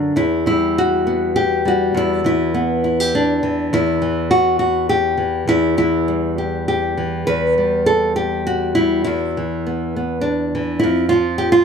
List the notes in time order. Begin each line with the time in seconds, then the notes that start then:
Already playing: F#2 D3 D4 G4
0.16 E2 E4
0.46 G3 E4
0.78 F#4
1.07 B3
1.36 G4
1.65 G3 F#4
1.94 E2 E4
2.24 E3 E4
2.54 B3
2.84 E4
3.00 G4
3.15 D4
3.43 E3
3.73 E2 E4
4.02 E3
4.31 F#4
4.59 F#4
4.89 G4
5.18 E3
5.48 E2 E4
5.77 E3 E4
6.08 G3
6.38 G4
6.68 G4
6.97 E3
7.27 E2 B4
7.58 G3
7.86 A4
8.16 G4
8.47 F#4
8.75 G3 E4
9.04 E2 E4
9.37 E3
9.67 B3
9.96 B3
10.21 D4
10.55 E3
10.79 E4
10.84 F2
11.09 F3 F4
11.38 G4
11.52 F4